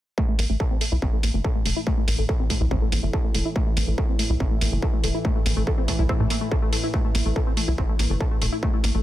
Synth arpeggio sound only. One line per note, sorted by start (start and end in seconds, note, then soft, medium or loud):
0.18 0.24 A3 medium
0.29 0.34 A3 medium
0.39 0.45 A#3 medium
0.50 0.56 A3 medium
0.60 0.64 A4 medium
0.71 0.77 C4 medium
0.81 0.85 A3 medium
0.92 0.96 E4 medium
1.02 1.06 C4 loud
1.13 1.19 A3 medium
1.23 1.30 A#3 medium
1.34 1.40 A3 medium
1.44 1.49 A4 medium
1.55 1.61 A3 medium
1.65 1.70 A3 medium
1.76 1.80 E4 medium
1.87 1.93 A3 medium
1.97 2.03 A3 medium
2.08 2.14 A#3 medium
2.19 2.25 A3 medium
2.29 2.33 A4 medium
2.40 2.46 C4 medium
2.50 2.54 A3 medium
2.61 2.65 E4 medium
2.71 2.75 C4 loud
2.82 2.88 A3 medium
2.92 2.99 A#3 medium
3.03 3.09 A3 medium
3.13 3.18 A4 medium
3.24 3.30 A3 medium
3.35 3.39 A3 medium
3.45 3.49 E4 medium
3.56 3.62 A3 loud
3.67 3.72 A3 medium
3.77 3.83 A#3 medium
3.88 3.94 A3 medium
3.98 4.02 A4 medium
4.09 4.15 C4 medium
4.19 4.23 A3 medium
4.30 4.34 E4 medium
4.40 4.44 C4 loud
4.51 4.57 A3 medium
4.61 4.68 A#3 medium
4.72 4.78 A3 medium
4.82 4.87 A4 medium
4.93 4.99 A3 medium
5.04 5.08 A3 medium
5.14 5.18 E4 medium
5.25 5.31 A3 loud
5.36 5.41 A3 medium
5.46 5.52 A#3 medium
5.57 5.63 A3 medium
5.67 5.71 A4 medium
5.78 5.84 C4 medium
5.88 5.92 A3 medium
5.99 6.03 E4 medium
6.09 6.13 C4 medium
6.20 6.26 A3 medium
6.30 6.37 A#3 medium
6.41 6.47 A3 medium
6.52 6.56 A4 medium
6.62 6.68 A3 medium
6.73 6.77 A3 medium
6.83 6.87 E4 medium
6.94 7.00 A3 loud
7.05 7.10 A3 medium
7.15 7.21 A#3 medium
7.26 7.32 A3 medium
7.36 7.40 A4 medium
7.47 7.53 C4 medium
7.57 7.61 A3 medium
7.68 7.72 E4 medium
7.78 7.82 C4 loud
7.89 7.95 A3 medium
7.99 8.06 A#3 medium
8.10 8.16 A3 medium
8.20 8.25 A4 medium
8.31 8.37 A3 medium
8.42 8.46 A3 medium
8.52 8.56 E4 medium
8.63 8.69 A3 medium
8.74 8.79 A3 medium
8.84 8.90 A#3 medium
8.95 9.01 A3 medium